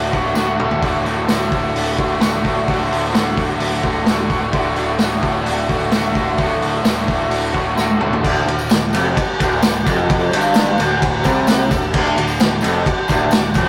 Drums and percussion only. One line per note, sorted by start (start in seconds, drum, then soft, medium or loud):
0.13 kick medium
0.13 open hi-hat soft
0.35 snare medium
0.35 tambourine loud
0.60 mid tom medium
0.71 floor tom medium
0.83 kick loud
0.83 open hi-hat medium
1.06 open hi-hat medium
1.28 snare loud
1.28 open hi-hat medium
1.28 tambourine loud
1.52 kick medium
1.52 open hi-hat medium
1.76 open hi-hat medium
1.99 kick medium
1.99 open hi-hat medium
2.21 snare loud
2.21 open hi-hat medium
2.21 tambourine loud
2.45 kick medium
2.45 open hi-hat medium
2.68 kick loud
2.68 open hi-hat medium
2.92 open hi-hat medium
3.15 snare loud
3.15 open hi-hat medium
3.15 tambourine loud
3.37 kick medium
3.37 open hi-hat medium
3.60 open hi-hat medium
3.83 kick medium
3.83 open hi-hat soft
4.06 snare loud
4.06 open hi-hat medium
4.06 tambourine medium
4.30 kick medium
4.30 open hi-hat medium
4.53 kick loud
4.53 open hi-hat medium
4.76 open hi-hat medium
4.99 snare loud
4.99 open hi-hat medium
4.99 tambourine medium
5.23 kick medium
5.23 open hi-hat medium
5.46 open hi-hat medium
5.69 kick medium
5.69 open hi-hat medium
5.92 snare loud
5.92 open hi-hat medium
5.92 tambourine medium
6.15 kick medium
6.15 open hi-hat medium
6.38 kick loud
6.38 open hi-hat medium
6.62 open hi-hat medium
6.85 snare loud
6.85 open hi-hat medium
6.85 tambourine loud
7.08 kick medium
7.08 open hi-hat medium
7.31 open hi-hat medium
7.54 kick medium
7.54 open hi-hat soft
7.77 snare medium
7.77 tambourine loud
7.90 high tom medium
8.01 mid tom medium
8.13 floor tom medium
8.24 kick loud
8.24 crash loud
8.24 tambourine soft
8.36 tambourine soft
8.48 ride medium
8.59 tambourine medium
8.70 snare loud
8.70 ride medium
8.70 tambourine loud
8.82 tambourine soft
8.93 ride medium
8.93 tambourine medium
9.17 kick loud
9.17 ride loud
9.17 tambourine soft
9.40 kick medium
9.40 ride medium
9.40 tambourine medium
9.52 tambourine soft
9.63 snare loud
9.63 ride loud
9.63 tambourine loud
9.86 kick medium
9.86 ride medium
9.86 tambourine medium
9.99 tambourine soft
10.09 kick loud
10.09 ride loud
10.09 tambourine soft
10.19 tambourine soft
10.31 ride medium
10.31 tambourine soft
10.41 tambourine medium
10.54 snare loud
10.54 ride loud
10.54 tambourine loud
10.66 tambourine soft
10.78 ride medium
10.78 tambourine medium
11.02 kick loud
11.02 ride loud
11.02 tambourine soft
11.24 kick medium
11.24 ride medium
11.24 tambourine medium
11.36 tambourine soft
11.47 snare loud
11.47 ride medium
11.47 tambourine loud
11.71 kick medium
11.71 ride medium
11.71 tambourine medium
11.82 tambourine soft
11.94 kick loud
11.94 tambourine soft
11.94 crash medium
12.06 tambourine soft
12.16 ride medium
12.16 tambourine soft
12.28 tambourine medium
12.40 snare loud
12.40 ride loud
12.40 tambourine loud
12.61 ride medium
12.61 tambourine medium
12.86 kick loud
12.86 ride loud
12.86 tambourine soft
13.08 kick medium
13.08 ride medium
13.08 tambourine medium
13.19 tambourine soft
13.31 snare loud
13.31 ride loud
13.31 tambourine loud
13.54 kick medium
13.54 ride medium
13.54 tambourine medium